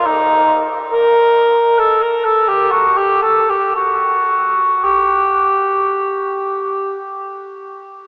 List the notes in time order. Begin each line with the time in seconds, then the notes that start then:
0.06 D#4
0.92 A#4
1.78 A4
2.02 A#4
2.24 A4
2.48 G4
2.71 F#4
2.98 G4
3.22 A4
3.50 G4
3.76 F#4
4.84 G4